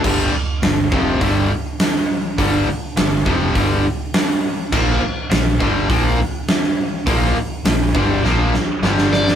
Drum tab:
CC |x---------------|----------------|x---------------|----------------|
HH |----o---o---o---|o---o---o---o---|----o---o---o---|o---o-----------|
SD |----o-------oo--|----o-------o---|----o-------oo--|----o---o-o-oooo|
BD |o-----o-o-------|o-----o-o-------|o-----o-o-------|o-----o---------|